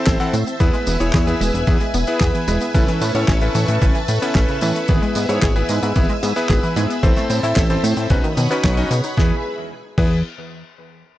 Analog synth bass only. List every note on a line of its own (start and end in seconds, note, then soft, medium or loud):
0.07 0.17 A1 loud
0.33 0.44 A2 medium
0.60 0.71 E2 loud
0.87 0.98 E1 loud
1.00 1.11 E1 medium
1.14 1.35 E2 loud
1.41 1.51 E1 medium
1.54 1.65 E1 loud
1.67 1.78 E2 loud
1.94 2.05 E1 loud
2.21 2.31 E2 medium
2.48 2.58 E1 medium
2.75 2.85 A1 loud
3.01 3.12 A2 loud
3.15 3.25 A2 medium
3.28 3.49 A1 loud
3.55 3.65 A2 loud
3.68 3.79 A2 loud
3.82 3.92 A1 loud
4.08 4.19 A2 loud
4.35 4.46 A1 medium
4.62 4.73 A2 medium
4.89 4.99 G#1 loud
5.16 5.26 G#2 loud
5.29 5.40 G#2 loud
5.42 5.64 G#1 loud
5.69 5.80 G#2 loud
5.83 5.93 G#2 loud
5.96 6.07 G#1 loud
6.23 6.33 G#2 loud
6.50 6.60 G#1 medium
6.76 6.87 G#2 medium
7.03 7.14 A1 loud
7.30 7.40 A2 loud
7.43 7.54 A2 loud
7.57 7.78 A1 loud
7.83 7.94 A2 loud
7.97 8.07 A2 loud
8.10 8.21 B1 loud
8.37 8.48 B2 medium
8.64 8.85 B1 medium
8.91 9.01 B2 loud
9.17 9.32 E2 loud
9.98 10.23 E2 loud